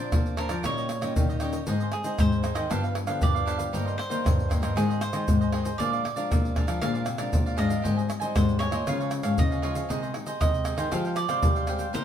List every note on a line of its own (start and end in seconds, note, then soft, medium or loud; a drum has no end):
0.00 0.11 A#2 medium
0.00 0.13 F3 medium
0.00 0.34 C4 medium
0.00 0.35 D4 medium
0.00 0.36 A#4 medium
0.00 0.37 C5 medium
0.00 0.36 D5 medium
0.12 0.46 A#2 loud
0.12 0.37 F3 medium
0.12 pandeiro medium
0.12 tamborim medium
0.12 shaker medium
0.12 surdo loud
0.26 pandeiro soft
0.26 shaker soft
0.37 0.54 F3 medium
0.37 0.54 C4 medium
0.37 0.50 D4 soft
0.37 0.54 D4 medium
0.37 0.49 A#4 soft
0.37 0.64 A#4 medium
0.37 0.48 C5 soft
0.37 0.48 D5 medium
0.37 pandeiro medium
0.37 tamborim medium
0.49 0.62 F3 medium
0.49 0.63 A#4 medium
0.49 0.63 C5 medium
0.49 0.62 D5 medium
0.49 pandeiro medium
0.49 tamborim medium
0.49 shaker medium
0.63 0.97 A#2 medium
0.63 1.14 A#2 medium
0.63 0.89 G3 medium
0.63 0.89 C#4 medium
0.63 0.76 D#4 medium
0.63 0.90 D#4 medium
0.63 0.76 G4 medium
0.63 0.76 C#5 medium
0.63 1.13 C#5 medium
0.63 0.76 D#5 medium
0.63 pandeiro medium
0.63 tamborim medium
0.63 shaker medium
0.63 surdo medium
0.77 0.88 G4 soft
0.77 0.88 C#5 soft
0.77 0.89 D#5 soft
0.77 pandeiro soft
0.77 shaker soft
0.89 muted cavaquinho stroke soft
0.89 pandeiro medium
0.89 tamborim medium
0.89 shaker medium
1.01 1.13 A#2 medium
1.01 1.37 G3 medium
1.01 1.37 C#4 medium
1.01 1.38 D#4 medium
1.01 1.28 G4 medium
1.01 1.27 C#5 medium
1.01 1.27 D#5 medium
1.01 pandeiro medium
1.01 tamborim medium
1.01 shaker medium
1.16 1.65 A#2 medium
1.16 1.60 D#3 medium
1.16 pandeiro medium
1.16 shaker medium
1.16 surdo loud
1.29 1.39 G4 soft
1.29 1.40 C#5 soft
1.29 1.41 D#5 medium
1.29 pandeiro soft
1.29 shaker soft
1.40 1.57 G3 medium
1.40 1.57 C#4 medium
1.40 1.53 D#4 medium
1.40 1.57 D#4 medium
1.40 1.53 G4 medium
1.40 1.53 C#5 medium
1.40 1.52 D#5 medium
1.40 pandeiro medium
1.40 tamborim medium
1.40 shaker medium
1.53 1.67 G4 soft
1.53 1.66 C#5 soft
1.53 1.66 D#5 soft
1.53 pandeiro medium
1.53 shaker medium
1.67 1.89 G#2 loud
1.67 2.17 G#2 medium
1.67 2.03 G#3 medium
1.67 2.03 C4 medium
1.67 1.79 D#4 medium
1.67 2.03 D#4 medium
1.67 1.79 G#4 medium
1.67 1.80 C5 medium
1.67 1.79 D#5 medium
1.67 pandeiro medium
1.67 shaker medium
1.67 surdo medium
1.80 1.91 G#4 soft
1.80 1.92 C5 soft
1.80 1.92 D#5 medium
1.80 pandeiro soft
1.80 shaker soft
1.92 2.18 G#4 medium
1.92 muted cavaquinho stroke soft
1.92 pandeiro medium
1.92 tamborim medium
2.04 2.40 G#3 medium
2.04 2.40 C4 medium
2.04 2.40 D#4 medium
2.04 2.42 G#4 medium
2.04 2.43 C5 medium
2.04 2.43 D#5 medium
2.04 pandeiro medium
2.04 shaker medium
2.19 2.52 G#2 loud
2.19 2.68 D#3 medium
2.19 2.67 C5 medium
2.19 pandeiro medium
2.19 tamborim medium
2.19 shaker medium
2.19 surdo loud
2.32 pandeiro soft
2.32 shaker soft
2.43 2.66 G#3 medium
2.43 2.66 C4 medium
2.43 2.55 D#4 soft
2.43 2.66 D#4 medium
2.43 2.55 G#4 soft
2.43 2.54 C5 soft
2.43 2.54 D#5 soft
2.43 pandeiro medium
2.43 tamborim medium
2.43 shaker medium
2.55 2.67 D#3 medium
2.55 2.69 G#4 medium
2.55 2.68 C5 medium
2.55 2.68 D#5 medium
2.55 pandeiro medium
2.55 tamborim medium
2.55 shaker medium
2.70 3.19 G2 medium
2.70 3.03 G2 loud
2.70 3.05 F3 medium
2.70 3.05 B3 medium
2.70 2.82 D4 medium
2.70 3.05 D4 medium
2.70 2.82 G4 medium
2.70 2.83 B4 medium
2.70 2.83 F5 medium
2.70 pandeiro medium
2.70 tamborim medium
2.70 shaker medium
2.70 surdo medium
2.84 2.95 G4 soft
2.84 2.95 B4 soft
2.84 2.95 F5 soft
2.84 pandeiro soft
2.84 shaker soft
2.95 muted cavaquinho stroke soft
2.95 pandeiro medium
2.95 tamborim medium
3.07 3.19 D3 medium
3.07 3.42 F3 medium
3.07 3.43 B3 medium
3.07 3.43 D4 medium
3.07 3.34 G4 medium
3.07 3.33 B4 medium
3.07 3.33 F5 medium
3.07 pandeiro medium
3.07 tamborim medium
3.07 shaker medium
3.21 3.65 G2 loud
3.21 3.71 D3 medium
3.21 3.95 D5 medium
3.21 pandeiro medium
3.21 shaker medium
3.21 surdo loud
3.35 3.45 G4 soft
3.35 3.46 B4 soft
3.35 3.46 F5 soft
3.35 pandeiro soft
3.35 shaker soft
3.45 3.69 F3 medium
3.45 3.69 B3 medium
3.45 3.58 D4 medium
3.45 3.69 D4 medium
3.45 3.59 G4 medium
3.45 3.58 B4 medium
3.45 3.56 F5 medium
3.45 pandeiro medium
3.45 tamborim medium
3.45 shaker medium
3.58 3.72 G4 soft
3.58 3.72 B4 soft
3.58 3.71 F5 medium
3.58 pandeiro medium
3.58 shaker medium
3.73 3.95 G2 medium
3.73 4.22 G2 medium
3.73 3.97 D#3 medium
3.73 3.98 A#3 medium
3.73 3.98 C4 medium
3.73 3.85 D#4 medium
3.73 3.85 A#4 medium
3.73 3.85 C5 medium
3.73 3.84 D#5 medium
3.73 pandeiro medium
3.73 shaker medium
3.73 surdo medium
3.85 3.96 A#4 soft
3.85 3.97 C5 soft
3.85 3.97 D#5 soft
3.85 pandeiro soft
3.85 shaker soft
3.98 4.71 C5 medium
3.98 muted cavaquinho stroke soft
3.98 pandeiro medium
3.98 tamborim medium
4.09 4.45 D#3 medium
4.09 4.45 A#3 medium
4.09 4.46 C4 medium
4.09 4.48 A#4 medium
4.09 4.49 C5 medium
4.09 4.48 D#5 medium
4.09 pandeiro medium
4.09 shaker medium
4.25 4.57 G2 loud
4.25 4.74 G2 medium
4.25 pandeiro medium
4.25 tamborim medium
4.25 shaker medium
4.25 surdo loud
4.39 pandeiro soft
4.39 shaker soft
4.48 4.72 D#3 medium
4.48 4.72 A#3 medium
4.48 4.73 C4 medium
4.48 4.61 D#4 soft
4.48 4.62 A#4 soft
4.48 4.61 C5 medium
4.48 4.61 D#5 medium
4.48 pandeiro medium
4.48 tamborim medium
4.48 shaker medium
4.48 surdo medium
4.62 4.73 G2 loud
4.62 4.75 A#4 medium
4.62 4.75 C5 medium
4.62 4.74 D#5 medium
4.62 pandeiro medium
4.62 tamborim medium
4.62 shaker medium
4.76 5.09 G#2 loud
4.76 5.25 G#2 medium
4.76 5.01 D#3 medium
4.76 5.01 G#3 medium
4.76 5.01 C4 medium
4.76 4.88 D#4 medium
4.76 4.88 G#4 medium
4.76 5.01 G#4 medium
4.76 4.88 C5 medium
4.76 4.88 D#5 medium
4.76 pandeiro medium
4.76 tamborim medium
4.76 shaker medium
4.76 surdo medium
4.89 5.01 G#4 soft
4.89 5.01 C5 soft
4.89 5.01 D#5 soft
4.89 pandeiro soft
4.89 shaker soft
5.01 5.74 C5 medium
5.01 muted cavaquinho stroke soft
5.01 pandeiro medium
5.01 tamborim medium
5.01 shaker medium
5.13 5.25 D#3 medium
5.13 5.27 D#3 medium
5.13 5.49 G#3 medium
5.13 5.49 C4 medium
5.13 5.39 G#4 medium
5.13 5.39 C5 medium
5.13 5.38 D#5 medium
5.13 pandeiro medium
5.13 tamborim medium
5.13 shaker medium
5.28 5.72 G#2 medium
5.28 5.52 D#3 medium
5.28 pandeiro medium
5.28 shaker medium
5.28 surdo loud
5.41 5.52 G#4 soft
5.41 5.52 C5 soft
5.41 5.52 D#5 medium
5.41 pandeiro soft
5.41 shaker soft
5.52 5.68 D#3 medium
5.52 5.68 G#3 medium
5.52 5.69 C4 medium
5.52 5.64 D#4 medium
5.52 5.64 G#4 medium
5.52 5.64 C5 medium
5.52 5.62 D#5 medium
5.52 pandeiro medium
5.52 tamborim medium
5.63 5.77 G#4 soft
5.63 5.77 C5 soft
5.63 5.76 D#5 soft
5.63 pandeiro medium
5.63 shaker medium
5.78 6.27 A#2 medium
5.78 6.01 A#2 medium
5.78 6.03 F3 medium
5.78 6.03 G#3 medium
5.78 6.03 D4 medium
5.78 5.90 G#4 medium
5.78 5.91 A#4 medium
5.78 6.51 D5 medium
5.78 5.90 D5 medium
5.78 5.91 F5 medium
5.78 pandeiro medium
5.78 shaker medium
5.78 surdo medium
5.92 6.03 A#4 soft
5.92 6.03 D5 medium
5.92 6.03 F5 soft
5.92 pandeiro soft
5.92 shaker soft
6.04 muted cavaquinho stroke soft
6.04 pandeiro medium
6.04 tamborim medium
6.16 6.51 F3 medium
6.16 6.51 G#3 medium
6.16 6.51 D4 medium
6.16 6.55 A#4 medium
6.16 6.54 D5 medium
6.16 6.55 F5 medium
6.16 pandeiro medium
6.16 shaker medium
6.31 6.79 F2 medium
6.31 6.63 A#2 loud
6.31 pandeiro medium
6.31 tamborim medium
6.31 shaker medium
6.31 surdo loud
6.45 pandeiro soft
6.45 shaker soft
6.55 6.77 F3 medium
6.55 6.78 G#3 medium
6.55 6.78 D4 medium
6.55 6.67 G#4 soft
6.55 6.68 A#4 soft
6.55 6.66 D5 medium
6.55 6.67 F5 soft
6.55 pandeiro medium
6.55 tamborim medium
6.55 surdo medium
6.67 6.79 F3 medium
6.67 6.81 A#4 medium
6.67 6.80 D5 medium
6.67 6.80 F5 medium
6.67 pandeiro medium
6.67 tamborim medium
6.67 shaker medium
6.81 7.04 A#2 loud
6.81 7.31 A#2 medium
6.81 7.06 F3 medium
6.81 7.07 G#3 medium
6.81 7.07 D4 medium
6.81 6.93 G#4 medium
6.81 6.94 A#4 medium
6.81 6.93 D5 medium
6.81 7.54 F5 medium
6.81 6.94 F5 medium
6.81 pandeiro medium
6.81 tamborim medium
6.81 shaker medium
6.81 surdo medium
6.94 7.05 A#4 soft
6.94 7.06 D5 medium
6.94 7.05 F5 soft
6.94 pandeiro soft
6.94 shaker soft
7.06 7.30 C3 medium
7.06 muted cavaquinho stroke soft
7.06 pandeiro medium
7.06 tamborim medium
7.06 shaker medium
7.18 7.54 F3 medium
7.18 7.54 G#3 medium
7.18 7.55 D4 medium
7.18 7.45 A#4 medium
7.18 7.44 D5 medium
7.18 7.44 F5 medium
7.18 pandeiro medium
7.18 tamborim medium
7.18 shaker medium
7.33 7.82 F2 medium
7.33 7.56 A#2 medium
7.33 pandeiro medium
7.33 shaker medium
7.33 surdo loud
7.46 7.56 A#4 soft
7.46 7.57 D5 soft
7.46 7.57 F5 soft
7.46 pandeiro soft
7.46 shaker soft
7.57 7.81 G#2 medium
7.57 7.74 F3 medium
7.57 7.74 G#3 medium
7.57 7.74 D4 medium
7.57 7.69 G#4 medium
7.57 7.69 A#4 medium
7.57 7.68 D5 medium
7.57 8.31 D#5 medium
7.57 7.69 F5 medium
7.57 pandeiro medium
7.57 tamborim medium
7.57 shaker medium
7.69 7.83 A#4 soft
7.69 7.82 D5 soft
7.69 7.82 F5 soft
7.69 pandeiro medium
7.69 shaker medium
7.82 8.06 G#2 medium
7.82 8.34 G#2 medium
7.82 8.19 G3 medium
7.82 8.20 C4 medium
7.82 7.95 G4 medium
7.82 7.96 C5 medium
7.82 7.96 D#5 medium
7.82 7.95 G#5 medium
7.82 pandeiro medium
7.82 shaker medium
7.82 surdo medium
7.86 8.20 D#4 medium
7.96 8.07 C5 soft
7.96 8.08 D#5 soft
7.96 8.08 G#5 medium
7.96 pandeiro soft
7.96 shaker soft
8.08 muted cavaquinho stroke soft
8.08 pandeiro medium
8.08 tamborim medium
8.08 shaker medium
8.20 8.57 G3 medium
8.20 8.57 C4 medium
8.20 8.57 D#4 medium
8.20 8.59 C5 medium
8.20 8.59 D#5 medium
8.20 8.59 G#5 medium
8.20 pandeiro medium
8.20 shaker medium
8.35 8.68 G#2 loud
8.35 8.85 D#3 medium
8.35 8.59 C5 medium
8.35 pandeiro medium
8.35 tamborim medium
8.35 shaker medium
8.35 surdo loud
8.49 pandeiro soft
8.49 shaker soft
8.59 8.76 G3 medium
8.59 8.76 C4 medium
8.59 8.76 D#4 medium
8.59 8.72 G4 soft
8.59 8.73 C5 soft
8.59 9.33 C#5 medium
8.59 8.71 D#5 medium
8.59 8.71 G#5 medium
8.59 pandeiro medium
8.59 tamborim medium
8.72 8.84 A#2 medium
8.72 8.86 C5 medium
8.72 8.85 D#5 medium
8.72 8.85 G#5 medium
8.72 pandeiro medium
8.72 tamborim medium
8.72 shaker medium
8.87 9.20 C#3 loud
8.87 9.36 C#3 medium
8.87 9.22 F3 medium
8.87 9.22 G#3 medium
8.87 9.22 C#4 medium
8.87 8.99 F4 medium
8.87 8.99 G#4 medium
8.87 8.99 C#5 medium
8.87 8.99 F5 medium
8.87 pandeiro medium
8.87 tamborim medium
8.87 shaker medium
8.87 surdo medium
9.00 9.11 G#4 soft
9.00 9.11 C#5 soft
9.00 9.11 F5 soft
9.00 pandeiro soft
9.00 shaker soft
9.11 muted cavaquinho stroke soft
9.11 pandeiro medium
9.11 tamborim medium
9.11 shaker medium
9.23 9.36 G#2 medium
9.23 9.59 F3 medium
9.23 9.59 G#3 medium
9.23 9.60 C#4 medium
9.23 9.50 G#4 medium
9.23 9.50 C#5 medium
9.23 9.49 F5 medium
9.23 pandeiro medium
9.23 tamborim medium
9.23 shaker medium
9.38 9.88 G#2 medium
9.38 9.82 C#3 medium
9.38 10.11 D#5 medium
9.38 pandeiro medium
9.38 shaker medium
9.38 surdo loud
9.51 9.62 G#4 soft
9.51 9.62 C#5 soft
9.51 9.63 F5 medium
9.51 pandeiro soft
9.51 shaker soft
9.62 9.86 F3 medium
9.62 9.86 G#3 medium
9.62 9.86 C#4 medium
9.62 9.75 F4 medium
9.62 9.75 G#4 medium
9.62 9.75 C#5 medium
9.62 9.74 F5 medium
9.62 pandeiro medium
9.62 tamborim medium
9.75 9.88 G#4 soft
9.75 9.88 C#5 soft
9.75 9.88 F5 soft
9.75 pandeiro medium
9.75 shaker medium
9.89 10.12 C3 medium
9.89 10.39 C3 medium
9.89 10.12 D#3 medium
9.89 10.12 G#3 medium
9.89 10.01 D#4 medium
9.89 10.12 D#4 medium
9.89 10.01 G#4 medium
9.89 10.02 C5 medium
9.89 10.00 D#5 medium
9.89 pandeiro medium
9.89 shaker medium
9.89 surdo medium
10.02 10.13 G#4 soft
10.02 10.13 C5 soft
10.02 10.14 D#5 medium
10.02 pandeiro soft
10.02 shaker soft
10.13 10.30 D#3 medium
10.13 10.30 G#3 medium
10.13 10.31 D#4 medium
10.13 muted cavaquinho stroke soft
10.13 pandeiro medium
10.13 tamborim medium
10.26 10.64 G#4 medium
10.26 10.65 C5 medium
10.26 10.65 D#5 medium
10.26 pandeiro medium
10.26 shaker medium
10.41 10.74 C3 loud
10.41 10.90 C3 medium
10.41 10.88 D#3 medium
10.41 10.89 G#3 medium
10.41 10.89 D#4 medium
10.41 11.14 D#5 medium
10.41 pandeiro medium
10.41 tamborim medium
10.41 shaker medium
10.41 surdo loud
10.54 pandeiro soft
10.54 shaker soft
10.64 10.77 D#4 soft
10.64 10.77 G#4 soft
10.64 10.77 C5 medium
10.64 10.75 D#5 medium
10.64 pandeiro medium
10.64 tamborim medium
10.64 shaker medium
10.76 10.89 D#3 loud
10.76 10.90 G#4 medium
10.76 10.90 C5 medium
10.76 10.90 D#5 medium
10.76 pandeiro medium
10.76 tamborim medium
10.76 shaker medium
10.91 11.41 F3 medium
10.91 11.25 F3 loud
10.91 11.16 G#3 medium
10.91 11.16 C4 medium
10.91 11.17 G4 medium
10.91 11.03 G#4 medium
10.91 11.04 C5 medium
10.91 11.04 F5 medium
10.91 11.04 G5 medium
10.91 pandeiro medium
10.91 tamborim medium
10.91 shaker medium
10.91 surdo medium
11.05 11.15 C5 soft
11.05 11.16 F5 soft
11.05 11.16 G5 soft
11.05 pandeiro soft
11.05 shaker soft
11.16 11.90 D5 medium
11.16 muted cavaquinho stroke soft
11.16 pandeiro medium
11.16 tamborim medium
11.16 shaker medium
11.28 11.40 C3 medium
11.28 11.64 G#3 medium
11.28 11.64 C4 medium
11.28 11.65 G4 medium
11.28 11.55 C5 medium
11.28 11.54 F5 medium
11.28 11.54 G5 medium
11.28 pandeiro medium
11.28 tamborim medium
11.28 shaker medium
11.43 11.92 C3 medium
11.43 11.87 G3 medium
11.43 pandeiro medium
11.43 shaker medium
11.43 surdo loud
11.55 11.67 C5 soft
11.55 11.68 F5 soft
11.55 11.67 G5 medium
11.55 pandeiro soft
11.55 shaker soft
11.67 11.85 G#3 medium
11.67 11.85 C4 medium
11.67 11.86 G4 medium
11.67 11.80 G#4 medium
11.67 11.80 C5 medium
11.67 11.79 F5 medium
11.67 11.78 G5 medium
11.67 pandeiro medium
11.67 tamborim medium
11.67 shaker medium
11.79 11.93 C5 soft
11.79 11.93 F5 soft
11.79 11.92 G5 medium
11.79 pandeiro medium
11.79 shaker medium
11.93 12.04 C3 medium
11.93 12.04 C3 loud
11.93 12.04 A#3 medium
11.93 12.04 D#4 medium
11.93 12.04 G4 medium
11.93 12.04 A#4 medium
11.93 12.04 C5 medium
11.93 12.04 D#5 medium
11.93 pandeiro medium
11.93 shaker medium
11.93 surdo medium